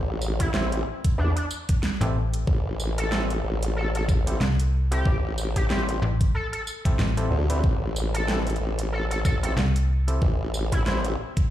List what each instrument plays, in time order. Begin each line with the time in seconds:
Already playing: wobble bass A1
0.22 tambourine
0.40 analog synth lead E4, kick, closed hi-hat
0.54 clav C4 E4 G4 C5, analog synth lead E4, snare
0.72 cross-stick, closed hi-hat
1.04 kick, closed hi-hat
1.18 wobble bass E2, analog synth lead D4
1.36 analog synth lead D4, closed hi-hat
1.51 tambourine
1.69 kick, closed hi-hat
1.83 snare
2.01 fm bass A1, clav C4 E4 G4 A4, cross-stick, closed hi-hat
2.34 closed hi-hat
2.47 wobble bass A1, kick
2.80 tambourine
2.98 analog synth lead A4, closed hi-hat
3.12 clav C4 E4 G4 A4, snare
3.30 cross-stick, closed hi-hat
3.44 wobble bass A1
3.63 closed hi-hat
3.76 analog synth lead A4
3.95 analog synth lead A4, closed hi-hat
4.09 kick, tambourine
4.27 clav C4 E4 G4 A4, closed hi-hat
4.41 fm bass C2, snare
4.60 closed hi-hat
4.91 clav C4 E4 G4 A4, analog synth lead G4, closed hi-hat
5.05 wobble bass A1, kick
5.38 tambourine
5.56 analog synth lead G4, kick, closed hi-hat
5.70 clav C4 E4 G4 C5, analog synth lead G4, snare
5.89 cross-stick, closed hi-hat
6.02 fm bass A1
6.21 kick, closed hi-hat
6.35 analog synth lead A4
6.53 analog synth lead A4, closed hi-hat
6.67 tambourine
6.85 clav C4 E4 G4 A4, kick, snare, closed hi-hat
6.99 fm bass A1, snare
7.17 clav C4 E4 G4 A4, cross-stick, closed hi-hat
7.31 wobble bass D2
7.50 clav C4 E4 G4 B4, closed hi-hat
7.64 wobble bass A1, kick
7.96 tambourine
8.14 analog synth lead A4, closed hi-hat
8.28 clav C4 E4 G4 A4, snare
8.47 cross-stick, closed hi-hat
8.50 closed hi-hat
8.56 wobble bass A1, closed hi-hat
8.79 closed hi-hat
8.93 analog synth lead A4
9.10 analog synth lead A4, closed hi-hat
9.24 analog synth lead A4, kick, tambourine
9.43 clav C4 E4 G4 A4, analog synth lead A4, closed hi-hat
9.57 fm bass C2, snare
9.76 closed hi-hat
10.08 clav C4 E4 G4 A4, closed hi-hat
10.22 wobble bass A1, kick
10.54 tambourine
10.72 analog synth lead E4, kick, closed hi-hat
10.86 clav C4 E4 G4 C5, analog synth lead E4, snare
11.05 cross-stick, closed hi-hat
11.37 kick, closed hi-hat